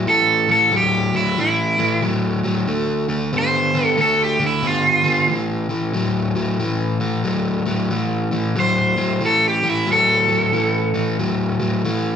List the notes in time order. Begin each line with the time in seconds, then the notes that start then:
0.07 A2 E3 A4
0.48 A2 E3 A4
0.71 A2 F#3
0.77 G4
1.13 A2 F#3 E4
1.37 A2 E3 E4
1.78 A2 E3
2.02 A2 F#3
2.44 A2 F#3
2.67 D3 A3
3.09 D3 A3
3.33 D3 B3
3.38 C5
3.74 D3 B3
3.86 A4
3.97 D3 A3
4.02 A4
4.24 G4
4.40 D3 A3
4.47 E4
4.63 D3 B3
4.67 F4
5.04 D3 B3
5.28 A2 E3
5.69 A2 E3
5.94 A2 F#3
6.35 A2 F#3
6.59 A2 E3
7.00 A2 E3
7.24 A2 F#3
7.66 A2 F#3
7.90 A2 E3
8.31 A2 E3
8.56 A2 F#3
8.60 C5
8.97 A2 F#3
9.21 A2 E3
9.26 A4
9.48 G4
9.63 A2 E3
9.70 E4
9.87 A2 F#3
9.92 A4
10.28 A2 F#3
10.53 A2 E3
10.94 A2 E3
11.19 A2 F#3
11.60 A2 F#3
11.85 A2 E3